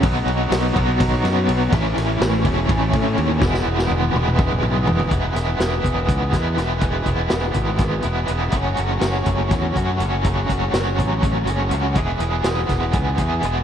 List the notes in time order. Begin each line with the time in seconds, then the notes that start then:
0.03 B1 B2 F#3 B3, kick, ride
0.07 D#4
0.26 B1, ride
0.50 B1, snare, ride
0.75 B1 B2 F#3 B3 D#4, kick, ride
1.00 kick, snare, ride
1.24 F#2, snare, ride
1.48 B1, ride
1.72 A1 A2 E3 A3 C#4 E4, kick, crash
1.97 A1, snare, ride
2.21 A1, snare, ride
2.44 E1 A3 C#4 E4, kick, ride
2.49 A2 E3
2.69 A1, kick, ride
2.93 A2, kick, ride
3.18 D#2, ride
3.41 E1 E3 G#3 B3 E4, kick, snare
3.54 snare
3.66 E1
3.79 snare
3.90 E1, high tom
4.14 E1 E3 G#3 B3 E4, mid tom
4.27 mid tom
4.39 kick
4.52 mid tom
4.63 B1, mid tom
4.87 E1, floor tom
4.99 floor tom
5.10 E1 E3 G#3 B3 E4, kick, closed hi-hat
5.34 E1 G#3 B3 E4, snare, closed hi-hat
5.59 E1 E3 G#3 B3 E4, snare, closed hi-hat
5.84 E1, kick, closed hi-hat
6.08 C#2, kick, closed hi-hat
6.32 E2 G#3 B3 E4, kick, snare, closed hi-hat
6.57 E1 E3 G#3 B3 E4, snare, closed hi-hat
6.81 E3 G#3 B3 E4, kick, closed hi-hat
7.06 E1 B3 E4, kick, closed hi-hat
7.10 G#3
7.30 E1 E3 G#3 B3 E4, snare, closed hi-hat
7.54 G#1, kick, closed hi-hat
7.79 kick, snare, closed hi-hat
8.03 E1 G#3 B3 E4, closed hi-hat
8.28 E1 E3 G#3 B3, closed hi-hat
8.32 E4
8.52 F#1 F#3 A3, kick, closed hi-hat
8.57 C#4 F#4
8.77 F#1 C#4 F#4, closed hi-hat
8.82 A3
9.01 F#1 F#3 A3, snare, closed hi-hat
9.05 C#4 F#4
9.26 F#1, kick, closed hi-hat
9.50 E2, kick, snare, closed hi-hat
9.76 F#2 A3 C#4 F#4, kick, closed hi-hat
10.00 F#1 F#3 A3 C#4, closed hi-hat
10.04 F#4
10.24 F#3 A3 C#4, kick, closed hi-hat
10.29 F#4
10.49 F#1 A3 C#4 F#4, kick, closed hi-hat
10.73 F#1 F#3 A3 C#4 F#4, snare, closed hi-hat
10.99 A1, kick, closed hi-hat
11.23 kick, closed hi-hat
11.46 F#1 A3 C#4 F#4, closed hi-hat
11.70 C#2 F#3 A3, closed hi-hat
11.74 C#4 F#4
11.95 E1 E3 G#3 B3 E4 G#4, kick, closed hi-hat
12.20 E1 B3 E4 G#4, closed hi-hat
12.44 E1 G#3 B3, snare, closed hi-hat
12.48 E4 G#4
12.69 E1, kick, snare, closed hi-hat
12.93 C#2, kick, closed hi-hat
13.18 E2 B3 E4 G#4, kick, closed hi-hat
13.42 E1 E3 G#3 B3 E4, closed hi-hat
13.46 G#4